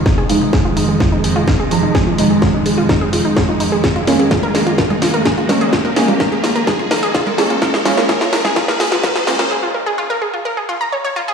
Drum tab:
HH |--o---o---o---o-|--o---o---o---o-|xxoxxxoxxxoxxxox|xxoxxxoxxxoxxxox|
SD |o---o---o---o---|o---o---o---o---|o-o-o-o-o-o-o-o-|o-o-o-o-o-o-o-o-|
CG |----------------|----------------|----O----O----O-|---O----O----O--|
BD |o---o---o---o---|o---o---o---o---|o---o---o---o---|o---o---o---o---|

HH |xxoxxxoxxxoxxxox|----------------|
SD |oooooooooooooooo|----------------|
CG |--O----O----O---|----------------|
BD |o---o---o---o---|----------------|